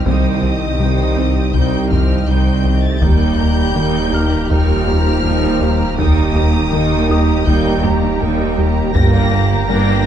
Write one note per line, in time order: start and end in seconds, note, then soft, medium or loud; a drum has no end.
0.05 0.71 C2 medium
0.05 0.28 C2 medium
0.05 3.04 C2 medium
0.05 0.72 C2 medium
0.05 0.28 C3 loud
0.05 1.37 D#3 medium
0.05 2.98 G3 medium
0.05 0.41 G3 medium
0.05 2.98 D#4 medium
0.05 0.41 D#4 medium
0.05 0.41 C5 medium
0.05 0.40 G5 medium
0.05 1.51 D#6 loud
0.05 taiko loud
0.42 0.65 C2 medium
0.42 0.80 C4 medium
0.42 0.80 G4 medium
0.42 0.80 D#5 medium
0.80 1.46 C2 medium
0.80 1.02 C3 medium
0.80 1.02 G3 medium
0.80 1.17 G3 medium
0.80 1.17 D#4 medium
0.80 1.18 C5 medium
0.80 1.18 G5 medium
1.17 1.40 C2 medium
1.17 1.39 C4 medium
1.17 1.55 C4 medium
1.17 1.55 G4 medium
1.17 1.54 D#5 medium
1.53 1.76 C2 medium
1.53 2.20 C2 medium
1.53 1.76 C3 loud
1.53 1.90 G3 medium
1.53 1.89 G3 medium
1.53 1.89 D#4 medium
1.53 1.89 C5 medium
1.53 1.89 G5 medium
1.53 1.91 G6 medium
1.53 taiko medium
1.90 2.13 C2 medium
1.90 2.14 D#3 medium
1.90 2.29 F3 medium
1.90 2.29 C4 medium
1.90 2.29 G4 medium
1.90 2.29 D#5 medium
1.90 2.27 F6 medium
1.90 taiko low medium
2.27 2.93 C2 medium
2.27 2.50 C2 medium
2.27 2.94 C2 medium
2.27 2.50 D#3 medium
2.27 2.65 G3 medium
2.27 2.84 G3 medium
2.27 2.66 D#4 medium
2.27 2.66 C5 medium
2.27 2.66 G5 medium
2.27 2.83 G6 medium
2.65 2.87 C2 medium
2.65 2.87 D#3 medium
2.65 3.03 C4 medium
2.65 3.02 G4 medium
2.65 3.02 D#5 medium
2.83 3.02 A3 medium
2.83 3.02 A6 medium
3.01 5.98 D#1 medium
3.01 3.24 D#2 loud
3.01 3.67 D#2 medium
3.01 3.68 D#2 medium
3.01 3.24 D#3 loud
3.01 3.37 G3 medium
3.01 5.81 G3 medium
3.01 4.48 G3 loud
3.01 3.37 D#4 medium
3.01 5.81 D#4 medium
3.01 3.36 A#4 medium
3.01 3.37 G5 medium
3.01 4.50 G6 loud
3.01 taiko loud
3.38 3.61 D#2 medium
3.38 3.77 A#3 medium
3.38 3.76 G4 medium
3.38 3.77 G4 medium
3.38 3.76 A#5 medium
3.76 4.42 D#2 medium
3.76 4.34 D#2 medium
3.76 3.98 D#3 medium
3.76 4.14 G3 medium
3.76 3.98 A#3 medium
3.76 4.14 D#4 medium
3.76 4.13 A#4 medium
3.76 4.13 G5 medium
4.12 4.35 D#2 medium
4.12 4.51 A#3 medium
4.12 4.35 D#4 medium
4.12 4.51 G4 medium
4.12 4.50 A#5 medium
4.12 6.32 F6 medium
4.49 4.72 D#2 medium
4.49 5.16 D#2 medium
4.49 4.73 D#3 medium
4.49 5.96 F3 loud
4.49 4.86 G3 medium
4.49 4.86 D#4 medium
4.49 4.85 A#4 medium
4.49 4.85 G5 medium
4.49 5.98 F6 loud
4.49 taiko medium
4.87 5.09 D#2 medium
4.87 5.10 G3 medium
4.87 5.25 A#3 medium
4.87 5.25 G4 medium
4.87 5.25 A#5 medium
4.87 taiko low soft
5.24 5.46 D#2 medium
5.24 5.90 D#2 medium
5.24 5.47 G3 medium
5.24 5.62 G3 medium
5.24 5.62 D#4 medium
5.24 5.62 A#4 medium
5.24 5.62 G5 medium
5.61 5.84 D#2 medium
5.61 5.84 G3 medium
5.61 5.99 A#3 medium
5.61 5.99 G4 medium
5.61 5.99 A#5 medium
5.97 8.96 D#1 medium
5.97 6.21 D#2 loud
5.97 6.64 D#2 medium
5.97 6.64 D#2 loud
5.97 6.21 D#3 loud
5.97 7.44 D#3 loud
5.97 8.91 G3 medium
5.97 6.34 G3 medium
5.97 8.91 D#4 medium
5.97 6.33 D#4 medium
5.97 6.34 A#4 medium
5.97 6.33 G5 medium
5.97 7.43 D#6 loud
5.97 taiko loud
6.35 6.58 D#2 medium
6.35 6.73 A#3 medium
6.35 6.73 G4 medium
6.35 6.74 G4 medium
6.35 6.73 A#5 medium
6.72 7.38 D#2 loud
6.72 7.38 D#2 medium
6.72 6.95 D#3 medium
6.72 7.10 G3 medium
6.72 6.95 A#3 medium
6.72 7.10 D#4 medium
6.72 7.10 A#4 medium
6.72 7.10 G5 medium
7.09 7.32 D#2 medium
7.09 7.47 A#3 medium
7.09 7.32 D#4 medium
7.09 7.47 G4 medium
7.09 9.29 D#5 soft
7.09 7.47 A#5 medium
7.09 9.29 D#6 medium
7.46 8.12 D#2 loud
7.46 7.69 D#2 loud
7.46 8.12 D#2 medium
7.46 8.13 D#2 medium
7.46 7.69 D#3 loud
7.46 7.84 G3 loud
7.46 7.82 G3 medium
7.46 7.82 D#4 medium
7.46 7.81 A#4 medium
7.46 7.81 G5 medium
7.46 7.84 G6 loud
7.46 taiko medium
7.83 8.06 D#2 medium
7.83 8.06 G3 medium
7.83 8.21 A#3 medium
7.83 8.20 G4 medium
7.83 8.21 G4 medium
7.83 8.20 A#5 medium
7.83 taiko low medium
8.20 8.86 D#2 loud
8.20 8.87 D#2 medium
8.20 8.44 D#2 medium
8.20 8.87 D#2 medium
8.20 8.43 G3 medium
8.20 8.58 G3 medium
8.20 8.59 D#4 medium
8.20 8.58 A#4 medium
8.20 8.58 G5 medium
8.58 8.81 D#2 medium
8.58 8.80 G3 medium
8.58 8.95 A#3 medium
8.58 8.95 G4 medium
8.58 8.96 A#5 medium
8.94 10.06 G1 medium
8.94 9.60 G1 medium
8.94 9.61 G1 loud
8.94 9.60 G2 loud
8.94 9.18 G2 loud
8.94 10.06 D3 medium
8.94 9.30 D3 medium
8.94 10.06 G3 medium
8.94 9.17 G3 loud
8.94 9.30 G3 medium
8.94 9.66 A#3 loud
8.94 9.30 A#4 medium
8.94 9.30 G5 medium
8.94 9.65 A#6 loud
8.94 taiko loud
9.32 9.55 G2 medium
9.32 9.69 A#3 medium
9.32 9.70 G4 medium
9.32 9.70 A#5 medium
9.68 10.06 G1 loud
9.68 10.06 G2 medium
9.68 10.06 G3 medium
9.68 9.92 G3 medium
9.68 10.05 A#3 loud
9.68 9.91 D4 medium
9.68 10.06 D4 medium
9.68 10.06 A#4 medium
9.68 10.06 G5 medium
9.68 10.05 A#6 loud